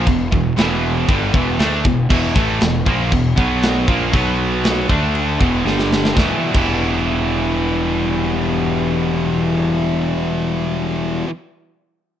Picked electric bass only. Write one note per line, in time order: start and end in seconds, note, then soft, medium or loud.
0.07 0.30 E1 medium
0.33 0.56 E1 medium
0.57 1.04 E1 loud
1.08 1.32 G1 medium
1.34 1.57 E1 loud
1.59 1.83 D2 medium
1.85 2.08 E1 medium
2.10 2.34 E1 medium
2.36 2.59 A1 medium
2.61 2.84 E1 medium
2.87 3.10 A#1 loud
3.12 3.35 E1 medium
3.38 3.85 B1 loud
3.88 4.11 A#1 medium
4.14 4.85 B1 medium
4.90 5.37 D2 medium
5.41 5.64 E1 loud
5.65 6.12 G1 loud
6.17 6.31 E1 medium
6.55 11.23 E1 medium